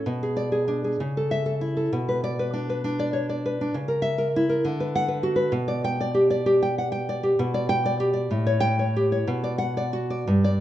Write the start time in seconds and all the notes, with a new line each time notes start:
0.06 B2
0.23 G#4
0.37 D5
0.52 G#4
0.68 D4
0.84 G#4
1.00 C#3
1.17 A4
1.31 E5
1.46 A4
1.61 E4
1.77 A4
1.93 B2
2.09 B4
2.24 D5
2.39 B4
2.54 D4
2.69 B4
2.84 D4
2.99 D5
3.13 C#5
3.29 D5
3.46 B4
3.61 D4
3.74 C#3
3.88 A#4
4.02 E5
4.18 A#4
4.36 E4
4.49 A#4
4.65 D3
4.80 B4
4.95 F#5
5.08 B4
5.23 F#4
5.36 B4
5.52 B2
5.68 D5
5.84 G5
6.00 D5
6.14 G4
6.30 D5
6.46 G4
6.62 G5
6.78 F#5
6.92 G5
7.09 D5
7.23 G4
7.39 B2
7.54 D5
7.69 G5
7.86 D5
8.00 G4
8.13 D5
8.31 A2
8.46 C#5
8.60 G5
8.79 C#5
8.96 G4
9.12 C#5
9.27 B2
9.44 D5
9.58 F#5
9.77 D5
9.93 F#4
10.10 D5
10.27 G2
10.44 D5